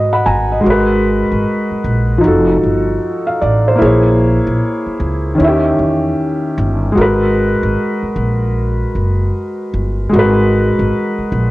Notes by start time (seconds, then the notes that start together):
Already playing: G#2 G#3 F#4 A#4 B4 D#5
0.13 F#5 B5
0.26 G#1 G#5 A#5
0.52 D#5
0.60 G#3 F#4
0.66 G#1 A#4 B4
1.32 G#1
1.71 muted upright bass stroke
1.84 A#1
2.18 F3 D#4
2.24 F1 F#4 A4
2.63 G1
3.27 F5
3.42 A1 D5
3.68 C5
3.75 A#3 E4
3.82 A#1 G#4 C#5
4.47 A#1
4.87 muted upright bass stroke
5.00 C#2
5.35 D#3 C#4
5.40 D#2 E4
5.45 G4 E5
5.79 E2
6.58 G1
6.92 G#3 F#4
6.97 G#1 A#4
7.02 B4
7.63 G#1
8.03 muted upright bass stroke
8.16 A#1
8.95 F#1
9.74 G1
10.09 G#3 F#4
10.14 G#1 A#4
10.19 B4
10.79 G#1
11.18 muted upright bass stroke
11.32 A#1